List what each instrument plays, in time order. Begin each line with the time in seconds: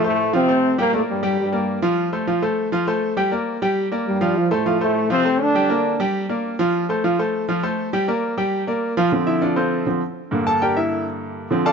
0.04 trombone section A2 A3, grand piano A3 A4 C5
0.33 trombone section C3 C4, grand piano F3 F4 F5
0.48 grand piano A3 A4 C5
0.78 trombone section A#2 A#3, grand piano G3 G4 G5
0.93 trombone section A2 A3, grand piano A#3 A#4 D5
1.08 trombone section G2 G3
1.23 grand piano G3 G4 G5
1.39 trombone section G2 G3
1.52 grand piano A#3 A#4 D5
1.82 grand piano F3 F4 F5
2.13 grand piano A3 A4 C5
2.27 grand piano F3 F4 F5
2.42 grand piano A3 A4 C5
2.72 grand piano F3 F4 F5
2.87 grand piano A3 A4 C5
3.17 grand piano G3 G4 G5
3.31 grand piano A#3 A#4 D5
3.62 grand piano G3 G4 G5
3.92 grand piano A#3 A#4 D5
4.06 trombone section G2 G3
4.21 grand piano F3 F4 F5
4.36 trombone section F3 F4
4.51 trombone section A2 A3, grand piano A3 A4 C5
4.66 grand piano F3 F4 F5
4.81 trombone section A2 A3, grand piano A3 A4 C5
5.10 trombone section C3 C4, grand piano F3 F4 F5
5.25 grand piano A3 A4 C5
5.40 trombone section D3 D4
5.55 grand piano G3 G4 G5
5.70 grand piano A#3 A#4 D5
6.00 grand piano G3 G4 G5
6.29 grand piano A#3 A#4 D5
6.59 grand piano F3 F4 F5
6.89 grand piano A3 A4 C5
7.04 grand piano F3 F4 F5
7.19 grand piano A3 A4 C5
7.49 grand piano F3 F4 F5
7.63 grand piano A3 A4 C5
7.93 grand piano G3 G4 G5
8.08 grand piano A#3 A#4 D5
8.37 grand piano G3 G4 G5
8.67 grand piano A#3 A#4 D5
8.97 grand piano F3 F4 F5
9.12 grand piano D3 F3 C4
9.27 grand piano E4 E5
9.42 grand piano D4 F4 A4 D5
9.56 grand piano C4 F4 A4 C5
9.86 grand piano D3 F3 C4
10.31 grand piano G2 D3 A#3
10.47 grand piano A4 A5
10.62 grand piano G4 A#4 D5 G5
10.77 grand piano E4 E5
11.51 grand piano D3 F3 C4
11.66 grand piano A4 D5 F5 A5